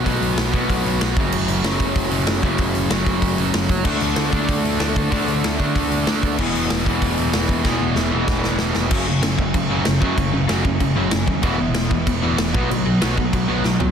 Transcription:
<<
  \new Staff \with { instrumentName = "Distorted electric guitar" } { \time 4/4 \key e \lydian \tempo 4 = 190 r1 | r1 | r1 | <d a d' fis' a'>1 |
<d a d' fis' a'>1 | <e gis b e' gis'>1 | <e gis b e' gis'>1 | <fis, cis fis ais cis'>1 |
<fis, cis fis ais cis'>1 | <e gis b e'>2.~ <e gis b e'>8 <b, fis b dis'>8~ | <b, fis b dis'>2.~ <b, fis b dis'>8 r8 | }
  \new Staff \with { instrumentName = "Distorted electric guitar" } { \clef bass \time 4/4 \key e \lydian <b, fis b>4. <b, fis b>4. <b, fis b>8 <fis, cis fis>8~ | <fis, cis fis>4 <fis, cis fis>4. <fis, cis fis>4 <fis, cis fis>8~ | <fis, cis fis>4 <fis, cis fis>4. <fis, cis fis>4 r8 | <d a d'>4. <d a d'>4. <d a d'>4 |
<d a d'>4. <d a d'>4. <d a d'>4 | <e, b, e>4. <e, b, e>4. <e, b, e>4 | <e, b, e>4. <e, b, e>4. <e, b, e>4 | <fis, cis fis>8 <fis, cis>8 <fis, cis>8 <fis, cis>8 <fis, cis>8 <fis, cis fis>8 <fis, cis>8 <fis, cis fis>8 |
<fis, cis>8 <fis, cis>8 <fis, cis fis>8 <fis, cis>8 <fis, cis>8 <fis, cis fis>8 <fis, cis>8 <fis, cis>8 | <e, b, e>8 <e, b,>8 <e, b,>8 <e, b,>8 <e, b,>8 <e, b, e>8 <e, b,>8 <b, fis b>8 | <b, fis>8 <b, fis>8 <b, fis b>8 <b, fis>8 <b, fis>8 <b, fis b>8 <b, fis>8 <b, fis>8 | }
  \new Staff \with { instrumentName = "Overdriven electric guitar" } { \clef bass \time 4/4 \key e \lydian <b, fis b>4. <b, fis b>2 <fis, cis fis>8~ | <fis, cis fis>4 <fis, cis fis>2~ <fis, cis fis>8 <fis, cis fis>8~ | <fis, cis fis>4 <fis, cis fis>2~ <fis, cis fis>8 r8 | <d a d'>4. <d a d'>2~ <d a d'>8 |
<d a d'>4. <d a d'>2~ <d a d'>8 | <e, b, e>4. <e, b, e>2~ <e, b, e>8 | <e, b, e>4. <e, b, e>2~ <e, b, e>8 | <fis, cis fis>8 <fis, cis>8 <fis, cis>8 <fis, cis>8 <fis, cis>8 <fis, cis fis>8 <fis, cis>8 <fis, cis fis>8 |
<fis, cis>8 <fis, cis>8 <fis, cis fis>8 <fis, cis>8 <fis, cis>8 <fis, cis fis>8 <fis, cis>8 <fis, cis>8 | <e, b, e>8 <e, b,>8 <e, b,>8 <e, b,>8 <e, b,>8 <e, b, e>8 <e, b,>8 <b, fis b>8 | <b, fis>8 <b, fis>8 <b, fis b>8 <b, fis>8 <b, fis>8 <b, fis b>8 <b, fis>8 <b, fis>8 | }
  \new Staff \with { instrumentName = "Picked electric bass" } { \clef bass \time 4/4 \key e \lydian b,,8 b,,8 b,,8 b,,8 b,,8 b,,8 b,,8 fis,,8 | fis,,8 fis,,8 fis,,8 fis,,8 fis,,8 fis,,8 fis,,8 fis,,8 | fis,,8 fis,,8 fis,,8 fis,,8 fis,,8 fis,,8 fis,,8 fis,,8 | d,8 d,8 d,8 d,8 d,8 d,8 d,8 d,8 |
d,8 d,8 d,8 d,8 d,8 d,8 d,8 d,8 | e,,8 e,,8 e,,8 e,,8 e,,8 e,,8 e,,8 e,,8 | e,,8 e,,8 e,,8 e,,8 e,,8 e,,8 e,,8 eis,,8 | fis,,8 fis,,8 fis,,8 fis,,8 fis,,4 fis,,8 fis,8 |
fis,,8 fis,,8 fis,,4 fis,,8 fis,,8 fis,,8 dis,8 | e,,8 e,,8 e,,8 e,,8 e,,4 e,,8 b,,8 | b,,8 b,,8 b,,4 b,,8 b,,8 b,,8 b,,8 | }
  \new DrumStaff \with { instrumentName = "Drums" } \drummode { \time 4/4 <hho bd>8 hho8 <hho sn>8 <hho bd>8 <hho bd>8 hho8 <hho sn>8 <hho bd>8 | cymc8 hho8 <hho sn>8 <hho bd>8 <hho bd>8 hho8 <hho sn>8 <hho bd>8 | <hho bd>8 hho8 <hho sn>8 <hho bd>8 <hho bd>8 hho8 <hho sn>8 <hho bd>8 | <cymc bd>8 hho8 <hho sn>8 <hho bd>8 <hho bd>8 hho8 <hho sn>8 <hho bd>8 |
<hho bd>8 hho8 <hho sn>8 <hho bd>8 <hho bd>8 hho8 <hho sn>8 <hho bd>8 | <cymc bd>8 hho8 <hho sn>8 <hho bd>8 <hho bd>8 hho8 <hho sn>8 <hho bd>8 | <bd sn>4 sn4 <bd sn>8 sn8 sn8 sn8 | <cymc bd>4 <cymc sn>8 bd8 <cymc bd>4 <cymc sn>8 bd8 |
<cymc bd>4 <cymc sn>8 bd8 <cymc bd>4 <cymc sn>8 bd8 | <cymc bd>4 <cymc sn>8 bd8 <cymc bd>4 <cymc sn>8 bd8 | cymc4 <cymc sn>8 bd8 <cymc bd>4 sn8 tomfh8 | }
>>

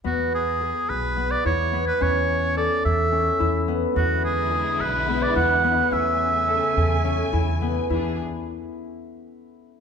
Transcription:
<<
  \new Staff \with { instrumentName = "Oboe" } { \time 7/8 \key e \mixolydian \tempo 4 = 107 fis'8 gis'4 b'8. d''16 cis''8. b'16 | cis''4 d''8 e''4. r8 | fis'8 gis'4 b'8. d''16 fis''4 | e''2~ e''8 r4 |
r2. r8 | }
  \new Staff \with { instrumentName = "Harp" } { \time 7/8 \key e \mixolydian b4 gis'4 b8 e'8 b8 | cis'4 a'4 cis'8 e'8 b8 | b4 gis'4 b8 e'8 b8 | cis'4 a'4 cis'8 e'8 b8 |
e'8 r2. | }
  \new Staff \with { instrumentName = "String section" } { \time 7/8 \key e \mixolydian r2. r8 | r2. r8 | <d gis e'>2.~ <d gis e'>8 | <cis a gis''>2.~ <cis a gis''>8 |
<e d' gis'>8 r2. | }
  \new Staff \with { instrumentName = "Upright bass" } { \clef bass \time 7/8 \key e \mixolydian e,4. b,,4 e,4 | e,4. e,4 e,4 | e,4. b,,4 e,4 | e,4. e,4 e,4 |
e,8 r2. | }
>>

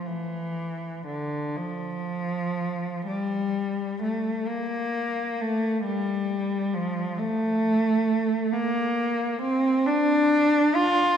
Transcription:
\new Staff \with { instrumentName = "Cello" } { \time 6/8 \key f \major \tempo 4. = 44 e4 d8 f4. | g4 a8 bes4 a8 | g4 f8 a4. | bes4 c'8 d'4 f'8 | }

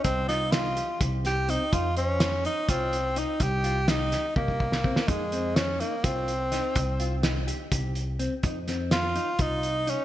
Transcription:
<<
  \new Staff \with { instrumentName = "Clean electric guitar" } { \time 7/8 \key f \minor \tempo 4 = 125 r8 f'8 ees'8 g'8 g'4 c'8 | ees'8 c''4 ees'8 f'4 ees'8~ | ees'8 f'8 ees'8 g'8 g'4 c'8 | ees'8 c'4 ees'8 f'4 ees'8~ |
ees'8 f'8 ees'8 g'8 g'4 c'8 | ees'8 c'4 ees'8 f'4 ees'8 | }
  \new Staff \with { instrumentName = "Tenor saxophone" } { \time 7/8 \key f \minor c'8 ees'8 f'4 r8 g'8 ees'8 | f'8 des'4 ees'8 c'4 ees'8 | g'4 ees'4 bes4. | aes4 des'8 bes8 c'4.~ |
c'4 r2 r8 | r4 f'4 ees'4 des'8 | }
  \new Staff \with { instrumentName = "Upright bass" } { \clef bass \time 7/8 \key f \minor c,2 c,4. | f,2 c,4. | c,2 c,4. | f,2 c,4. |
c,2 c,4. | f,2 c,4. | }
  \new DrumStaff \with { instrumentName = "Drums" } \drummode { \time 7/8 <hh bd>8 <hh sn>8 <hh sn>8 hh8 <hh bd>8 <hh sn>8 hh8 | <hh bd>8 hh8 <hh sn>8 hh8 <hh bd>8 hh8 hh8 | <hh bd>8 hh8 <hh sn>8 <hh sn>8 bd16 bd16 bd16 sn16 bd16 sn16 | <hh bd>8 hh8 <hh sn>8 hh8 <hh bd>8 hh8 <hh sn>8 |
<hh bd>8 hh8 <hh sn>8 hh8 <hh bd>8 hh8 hh8 | <hh bd>8 <hh sn>8 <hh sn>8 hh8 <hh bd>8 hh8 hh8 | }
>>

